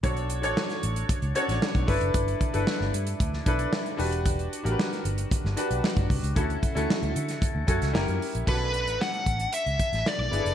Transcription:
<<
  \new Staff \with { instrumentName = "Lead electric guitar" } { \time 4/4 \key b \minor \tempo 4 = 114 r1 | r1 | r1 | r1 |
b'4 fis''4 e''4 d''4 | }
  \new Staff \with { instrumentName = "Grand piano" } { \time 4/4 \key b \minor <d' fis' a' cis''>8 r16 <d' fis' a' cis''>4 r8. <cis' d' fis' a' cis''>4 <d' e' a' b'>8~ | <d' e' a' b'>8 r16 <d' e' a' b'>4 r8. <d' e' a' b'>4 <d' fis' g' b'>8~ | <d' fis' g' b'>8 r16 <d' fis' g' ais' b'>4 r8. <d' fis' g' b'>4 r8 | <cis' e' fis' a'>8 r16 <cis' e' fis' a'>4 r8. <cis' e' fis' a'>8 <cis' e' g' ais'>8. r16 |
<cis' d' fis' a'>4~ <cis' d' fis' a'>16 r2 r16 <b d' e' gis' a'>8 | }
  \new Staff \with { instrumentName = "Fingered electric bass" } { \clef bass \time 4/4 \key b \minor b,,8. a,,16 r8 a,,8 r16 cis,16 r16 a,,16 r16 b,,16 g,,16 fis,,16 | g,,8 r16 g,,16 r16 g,,16 g,8 d,8 b,,8 r8 e,,8~ | e,,8. a,,16 r8 g,,8 r16 g,,16 r16 b,,16 r16 g,,16 c,16 cis,16 | d,8 r16 d,16 r16 d,16 d8 r16 d,16 fis,16 cis,16 fis,,16 fis,16 r16 ais,,16 |
b,,8. a,,16 r8 a,,8 r16 cis,16 r16 a,,16 r16 b,,16 g,,16 fis,,16 | }
  \new DrumStaff \with { instrumentName = "Drums" } \drummode { \time 4/4 <hh bd>16 hh16 hh16 hh16 sn16 <hh sn>16 hh16 hh16 <hh bd>16 hh16 hh16 <hh sn>16 sn16 <hh bd>16 <hho bd>16 hh16 | <hh bd>16 hh16 <hh bd>16 hh16 sn16 sn16 hh16 hh16 <hh bd>16 sn16 <hh bd>16 hh16 sn16 hh16 hho16 hh16 | <hh bd>16 hh16 hh16 hh16 sn16 <hh sn>16 hh16 hh16 <hh bd>16 sn16 hh16 hh16 sn16 <hh bd>16 <hho bd>16 hh16 | <hh bd>16 hh16 <hh bd>16 hh16 sn16 hh16 hh16 <hh sn>16 <hh bd>8 <hh bd>16 <hh sn>16 sn16 hh16 hho16 hh16 |
<cymc bd>8 hh16 hh16 sn16 hh16 <hh bd>16 hh16 hh16 hh16 <hh bd>16 <hh sn>16 sn8 hh16 hh16 | }
>>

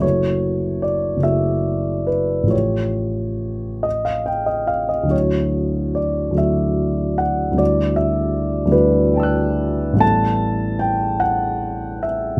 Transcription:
<<
  \new Staff \with { instrumentName = "Grand piano" } { \time 6/8 \key a \mixolydian \tempo 4. = 48 << { r2. | r2. | r2. | r2 <g'' a'' e''' fis'''>4 |
r2. | } \\ { cis''4 d''8 e''4 b'8 | cis''4. ees''16 eis''16 g''16 ees''16 eis''16 ees''16 | cis''4 d''8 e''4 fis''8 | d''8 e''4 b'4. |
a''4 g''8 fis''4 e''8 | } >> }
  \new Staff \with { instrumentName = "Grand piano" } { \time 6/8 \key a \mixolydian <fis,, fis a e' fis'>4. <fis,, fis a e' fis'>4. | <a,, eis a eis' g'>2. | <d, fis a e' fis'>4. <d, fis a e' fis'>4. | <d, g a e' fis'>4. <d, g a e' fis'>4. |
<a,, g b e' a'>2. | }
>>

